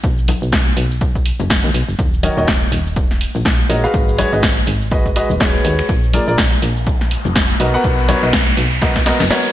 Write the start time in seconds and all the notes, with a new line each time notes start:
0.03 B1, kick, tambourine, shaker
0.18 tambourine, shaker
0.28 open hi-hat, high conga, shaker
0.42 B1, tambourine, shaker
0.52 kick, snare, tambourine, shaker
0.68 tambourine
0.77 B1, open hi-hat, shaker
0.91 tambourine, shaker
1.01 kick, tambourine, shaker
1.15 kick, tambourine, shaker
1.26 open hi-hat, shaker
1.40 F#1, tambourine, high conga, shaker
1.50 kick, snare, tambourine, shaker
1.64 D#2, tambourine, shaker
1.74 B1, open hi-hat, shaker
1.89 F#1, tambourine, shaker
1.99 D#1, kick, tambourine, shaker
2.13 tambourine, shaker
2.23 D#3 F#4 A#4 C#5 D#5, open hi-hat, high conga, shaker
2.37 D#1 D#3 F#4 A#4 C#5 D#5, tambourine, shaker
2.48 kick, snare, tambourine, shaker
2.61 tambourine
2.72 D#1, open hi-hat, shaker
2.87 tambourine, shaker
2.96 kick, tambourine, shaker
3.11 snare, tambourine, shaker
3.21 open hi-hat, shaker
3.35 A#1, tambourine, high conga, shaker
3.45 kick, snare, tambourine, shaker
3.59 tambourine, shaker
3.70 A#1 G#3 F#4 A#4 C#5 D#5, open hi-hat, shaker
3.84 G#3 F#4 G#4 B4 F5, tambourine, shaker
3.94 G#1, kick, tambourine, shaker
4.08 tambourine, shaker
4.18 G#3 F#4 G#4 B4 C#5, open hi-hat, high conga, shaker
4.32 G#1 G#3 F#4 G#4 B4 D#5, tambourine, shaker
4.43 kick, snare, tambourine, shaker
4.57 tambourine
4.67 G#1, open hi-hat, shaker
4.82 tambourine, shaker
4.92 G#3 F#4 G#4 B4 D#5, kick, tambourine, shaker
5.06 kick, tambourine, shaker
5.16 G#3 F#4 G#4 B4 D#5, open hi-hat, shaker
5.30 D#1, tambourine, high conga, shaker
5.40 G#3 F#4 G#4 B4 C#5, kick, snare, tambourine, shaker
5.55 tambourine, shaker
5.65 D#2, open hi-hat, shaker
5.79 finger snap, tambourine, shaker
5.89 A#1, kick, tambourine, riser, shaker
6.03 tambourine, shaker
6.13 A#3 F4 G#4 A#4 D5, open hi-hat, high conga, shaker
6.28 A#1 A#3 F4 G#4 A#4 D5, tambourine, shaker
6.38 kick, snare, tambourine, shaker
6.52 tambourine
6.62 A#1, open hi-hat, shaker
6.76 tambourine, shaker
6.86 kick, tambourine, shaker
7.01 snare, tambourine, shaker
7.11 open hi-hat, shaker
7.24 F1, tambourine, high conga, shaker
7.35 kick, snare, tambourine, shaker
7.50 tambourine, shaker
7.60 B1 B3 F#4 A#4 B4 D#5, open hi-hat, shaker
7.74 B3 F#4 A#4 B4 F#5, tambourine, shaker
7.84 B1, kick, tambourine, shaker
7.99 tambourine, shaker
8.09 B3 F#4 A#4 B4 C#5, open hi-hat, high conga, shaker
8.23 B1 B3 F#4 A#4 B4 D#5, tambourine, shaker
8.33 kick, snare, tambourine, shaker
8.47 tambourine, shaker
8.57 B1, open hi-hat, shaker
8.71 tambourine, shaker
8.82 B3 F#4 A#4 B4 D#5, kick, snare, tambourine, shaker
8.95 kick, snare, tambourine, shaker
9.06 B3 F#4 A#4 B4 D#5, snare, open hi-hat, shaker
9.20 F#1, snare, tambourine, high conga, shaker
9.30 B3 F#4 A#4 B4 C#5, snare, tambourine, shaker
9.44 tambourine, shaker